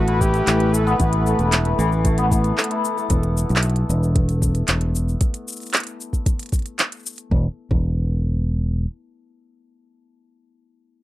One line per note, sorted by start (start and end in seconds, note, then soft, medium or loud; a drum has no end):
0.00 0.40 A1 loud
0.00 0.46 E3 medium
0.00 0.33 A3 medium
0.00 3.06 A3 medium
0.00 0.86 B3 medium
0.00 3.07 E4 medium
0.00 0.22 F#4 loud
0.00 3.06 B4 medium
0.08 1.39 E4 medium
0.08 closed hi-hat soft
0.21 0.75 G4 loud
0.21 kick loud
0.21 cabasa medium
0.34 0.73 A3 medium
0.34 closed hi-hat soft
0.34 cabasa soft
0.47 0.93 A1 medium
0.47 0.99 E3 loud
0.47 clap loud
0.47 closed hi-hat medium
0.47 cabasa soft
0.60 closed hi-hat soft
0.74 1.26 A3 medium
0.74 1.00 A4 medium
0.74 cabasa medium
0.87 2.18 B3 loud
0.87 cabasa soft
1.00 1.33 A1 loud
1.00 1.78 E3 medium
1.00 kick loud
1.00 closed hi-hat medium
1.00 cabasa soft
1.13 closed hi-hat soft
1.26 1.65 A3 medium
1.26 cabasa medium
1.39 1.72 E1 loud
1.39 2.71 E4 medium
1.39 closed hi-hat soft
1.39 cabasa soft
1.52 clap loud
1.52 closed hi-hat medium
1.52 cabasa soft
1.65 2.05 A3 medium
1.65 closed hi-hat soft
1.79 2.51 A1 loud
1.79 2.30 E3 loud
1.79 cabasa medium
1.92 cabasa soft
2.05 2.58 A3 medium
2.05 kick loud
2.05 closed hi-hat medium
2.05 cabasa soft
2.18 6.32 B3 loud
2.18 closed hi-hat soft
2.18 cabasa soft
2.31 3.15 E3 medium
2.31 kick medium
2.31 cabasa medium
2.44 closed hi-hat soft
2.44 cabasa soft
2.58 2.97 A3 medium
2.58 clap loud
2.58 cabasa soft
2.64 closed hi-hat medium
2.71 6.19 E4 medium
2.71 closed hi-hat soft
2.85 cabasa medium
2.97 7.41 A3 medium
2.97 cabasa soft
3.10 3.43 E1 loud
3.10 kick loud
3.10 closed hi-hat medium
3.10 cabasa soft
3.23 closed hi-hat soft
3.37 cabasa medium
3.49 3.83 B1 loud
3.49 closed hi-hat soft
3.49 cabasa soft
3.56 clap loud
3.56 closed hi-hat soft
3.63 closed hi-hat medium
3.63 cabasa soft
3.70 closed hi-hat soft
3.76 closed hi-hat soft
3.89 4.62 E1 loud
3.89 cabasa medium
4.03 cabasa soft
4.16 kick loud
4.16 closed hi-hat medium
4.29 closed hi-hat soft
4.29 cabasa soft
4.42 kick loud
4.42 cabasa medium
4.55 closed hi-hat soft
4.55 cabasa soft
4.68 5.14 E1 medium
4.68 clap loud
4.68 closed hi-hat medium
4.68 cabasa soft
4.81 closed hi-hat soft
4.95 cabasa medium
5.08 cabasa soft
5.21 kick loud
5.21 closed hi-hat medium
5.21 cabasa soft
5.34 closed hi-hat medium
5.34 cabasa soft
5.48 cabasa medium
5.52 cabasa medium
5.56 cabasa soft
5.60 closed hi-hat soft
5.60 cabasa soft
5.63 closed hi-hat soft
5.63 cabasa soft
5.67 closed hi-hat soft
5.67 cabasa soft
5.70 clap loud
5.70 closed hi-hat soft
5.74 closed hi-hat medium
5.74 cabasa soft
5.77 closed hi-hat medium
5.80 closed hi-hat soft
5.84 closed hi-hat soft
5.87 closed hi-hat soft
5.87 cabasa soft
6.01 cabasa medium
6.13 kick medium
6.13 cabasa soft
6.26 kick loud
6.26 closed hi-hat medium
6.26 cabasa soft
6.39 closed hi-hat soft
6.39 cabasa soft
6.43 closed hi-hat soft
6.46 closed hi-hat soft
6.49 closed hi-hat soft
6.52 kick loud
6.52 closed hi-hat soft
6.52 cabasa medium
6.56 closed hi-hat soft
6.59 closed hi-hat soft
6.62 closed hi-hat soft
6.66 closed hi-hat soft
6.66 cabasa soft
6.79 clap loud
6.79 closed hi-hat medium
6.79 cabasa soft
6.92 closed hi-hat soft
6.92 cabasa soft
6.96 cabasa soft
6.99 cabasa soft
7.03 cabasa soft
7.06 cabasa medium
7.09 cabasa soft
7.12 cabasa soft
7.16 closed hi-hat soft
7.16 cabasa soft
7.19 cabasa soft
7.31 7.46 E1 loud
7.31 kick loud
7.71 8.85 E1 loud
7.71 kick loud